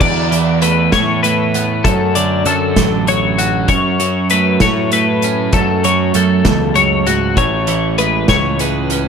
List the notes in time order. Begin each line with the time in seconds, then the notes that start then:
Already playing: D3
0.00 E2 D5, kick, crash
0.32 E3, closed hi-hat
0.62 A3 B4, closed hi-hat
0.92 A2 E3 C#5, kick, snare, closed hi-hat
1.23 A3 B4, closed hi-hat
1.54 B3, closed hi-hat
1.84 F#2 A4, kick, closed hi-hat
2.15 D3 D5, closed hi-hat
2.46 F#2 F#3 A4, closed hi-hat
2.76 A1 D3, kick, snare, closed hi-hat
3.07 F#3 C#5, closed hi-hat
3.38 C#4 F#4, closed hi-hat
3.68 F#2 C#5, kick, closed hi-hat
4.00 F#3, closed hi-hat
4.30 A3 B4, closed hi-hat
4.60 A2 F#3 C#5, kick, snare, closed hi-hat
4.92 A3 B4, closed hi-hat
5.22 C#4, closed hi-hat
5.53 F#2 A4, kick, closed hi-hat
5.84 F#3 C#5, closed hi-hat
6.14 F#2 A3 A4, closed hi-hat
6.45 C#2 E2, kick, snare, closed hi-hat
6.75 F#2 C#5, closed hi-hat
7.07 G#2 F#4, closed hi-hat
7.37 A1 A2 C#5, kick, closed hi-hat
7.67 E3, closed hi-hat
7.98 G#3 B4, closed hi-hat
8.28 C#2 E3 C#5, kick, snare, closed hi-hat
8.59 G#3 B4, closed hi-hat
8.90 C#4, closed hi-hat